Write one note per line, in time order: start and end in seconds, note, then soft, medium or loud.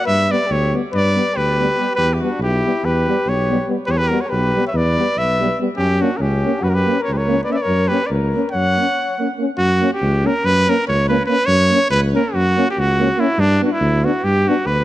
0.04 0.31 G2 medium
0.04 0.28 B4 medium
0.04 0.33 E5 loud
0.28 0.39 G3 medium
0.28 0.38 B3 medium
0.28 0.48 B4 medium
0.28 0.53 D5 loud
0.47 0.74 D2 loud
0.47 0.72 G4 medium
0.52 0.75 C#5 medium
0.73 0.81 G3 soft
0.73 0.81 B3 medium
0.92 1.18 G2 loud
0.92 1.35 B4 medium
0.92 1.38 D5 loud
1.16 1.24 G3 soft
1.16 1.24 B3 medium
1.34 1.70 D2 medium
1.34 1.95 G4 medium
1.34 1.95 B4 loud
1.59 1.67 G3 medium
1.59 1.66 B3 medium
1.77 1.86 G3 soft
1.77 1.85 B3 soft
1.95 2.21 E2 medium
1.95 2.17 G4 medium
1.95 2.15 B4 loud
2.14 2.24 E4 soft
2.14 2.22 G4 medium
2.21 2.30 G3 medium
2.21 2.29 B3 medium
2.21 2.42 D4 medium
2.21 2.40 F#4 medium
2.39 2.63 B1 loud
2.39 2.87 G4 medium
2.43 2.87 E4 medium
2.65 2.73 G3 medium
2.65 2.73 B3 soft
2.83 3.07 E2 loud
2.83 3.30 G4 medium
2.83 3.30 B4 medium
3.07 3.16 G3 medium
3.07 3.15 B3 medium
3.26 3.59 B1 medium
3.26 3.69 G4 medium
3.26 3.69 C#5 medium
3.49 3.57 G3 medium
3.49 3.58 B3 medium
3.68 3.76 G3 medium
3.68 3.76 B3 medium
3.86 4.11 E2 medium
3.86 3.98 G4 medium
3.86 3.92 B4 loud
3.91 3.99 C#5 medium
3.96 4.02 A#4 medium
3.96 4.09 B4 loud
4.01 4.12 G4 medium
4.08 4.19 G3 medium
4.08 4.19 B3 medium
4.08 4.28 F#4 medium
4.08 4.22 A#4 medium
4.21 4.31 C#5 medium
4.26 4.66 G4 medium
4.26 4.31 A#4 medium
4.26 4.66 B4 medium
4.32 4.55 B1 loud
4.55 4.63 G3 medium
4.55 4.64 B3 medium
4.67 4.75 C#5 medium
4.67 4.78 E5 medium
4.73 4.97 E2 loud
4.73 5.17 B4 medium
4.73 5.20 D5 loud
4.97 5.06 G3 medium
4.97 5.05 B3 medium
5.16 5.50 B1 medium
5.16 5.58 B4 medium
5.16 5.59 E5 medium
5.40 5.48 G3 medium
5.40 5.47 B3 medium
5.60 5.68 G3 medium
5.60 5.68 B3 medium
5.76 6.01 F#2 loud
5.76 6.03 C#4 medium
5.76 6.03 G4 loud
6.01 6.09 A#3 medium
6.01 6.09 C#4 medium
6.01 6.15 D4 medium
6.01 6.18 F#4 medium
6.14 6.62 C#4 medium
6.14 6.19 F#4 medium
6.14 6.23 A#4 medium
6.20 6.44 C#2 loud
6.20 6.65 G4 medium
6.45 6.53 A#3 medium
6.45 6.53 C#4 medium
6.60 6.87 F#2 loud
6.60 6.69 F#4 medium
6.60 6.71 B4 medium
6.69 6.77 F#4 medium
6.69 6.76 A#4 medium
6.74 6.99 G4 medium
6.74 7.02 B4 loud
6.86 6.94 A#3 medium
6.91 6.98 C#4 medium
7.00 7.15 A#4 medium
7.00 7.15 C#5 medium
7.08 7.41 C#2 loud
7.13 7.17 G4 medium
7.13 7.43 A#4 medium
7.13 7.19 B4 medium
7.13 7.43 C#5 medium
7.27 7.35 A#3 medium
7.27 7.38 C#4 medium
7.44 7.55 A#3 medium
7.44 7.52 B4 medium
7.44 7.54 D5 medium
7.50 7.57 C#4 medium
7.50 7.64 B4 medium
7.50 7.53 C#5 medium
7.50 7.56 E5 medium
7.54 7.64 D5 medium
7.62 7.90 A#4 medium
7.62 7.89 C#5 loud
7.67 7.91 F#2 loud
7.88 7.98 A#3 medium
7.88 7.99 C#4 medium
7.88 8.06 G4 medium
7.88 8.08 B4 loud
8.04 8.10 B4 medium
8.04 8.09 D5 medium
8.09 8.34 C#2 loud
8.09 8.51 A#4 medium
8.34 8.42 A#3 medium
8.34 8.43 C#4 medium
8.52 8.78 F#2 medium
8.52 9.33 C#5 medium
8.52 9.33 F#5 loud
8.76 8.84 A#3 soft
8.76 8.87 C#4 medium
9.19 9.26 A#3 medium
9.19 9.28 C#4 medium
9.37 9.45 A#3 soft
9.37 9.48 C#4 medium
9.58 9.82 F#2 loud
9.58 9.89 F#4 loud
9.81 9.89 A#3 medium
9.81 9.89 C#4 medium
9.93 10.28 G4 medium
10.01 10.25 C#2 loud
10.25 10.33 A#3 medium
10.25 10.33 C#4 medium
10.25 10.47 A#4 loud
10.45 10.68 F#2 loud
10.45 10.71 B4 loud
10.67 10.76 A#3 medium
10.67 10.75 C#4 medium
10.67 10.87 A#4 loud
10.88 11.21 C#2 loud
10.88 11.08 C#5 loud
11.08 11.17 A#3 medium
11.08 11.16 C#4 medium
11.08 11.26 B4 medium
11.26 11.36 A#3 medium
11.26 11.37 C#4 medium
11.26 11.47 B4 loud
11.46 11.71 F#2 loud
11.46 11.89 C#5 loud
11.70 11.78 A#3 medium
11.70 11.80 C#4 medium
11.90 12.14 C#2 loud
11.90 12.01 B4 loud
12.13 12.23 A#3 medium
12.13 12.21 C#4 medium
12.13 12.36 A#4 loud
12.34 12.58 F#2 loud
12.34 12.70 F#4 loud
12.57 12.65 A#3 medium
12.57 12.65 C#4 medium
12.70 12.81 G4 medium
12.78 13.10 C#2 loud
12.78 13.21 F#4 loud
12.99 13.07 A#3 medium
12.99 13.08 C#4 medium
13.17 13.25 A#3 medium
13.17 13.27 C#4 medium
13.17 13.41 E4 loud
13.38 13.61 G2 loud
13.38 13.64 D4 loud
13.61 13.69 B3 medium
13.61 13.71 D4 medium
13.61 13.73 F#4 medium
13.72 14.06 E4 loud
13.81 14.04 D2 loud
14.04 14.12 B3 medium
14.04 14.13 D4 medium
14.04 14.25 F#4 medium
14.24 14.47 G2 medium
14.24 14.50 G4 loud
14.48 14.56 B3 medium
14.48 14.56 D4 medium
14.48 14.68 F#4 medium
14.65 14.84 D2 loud
14.65 14.84 B4 loud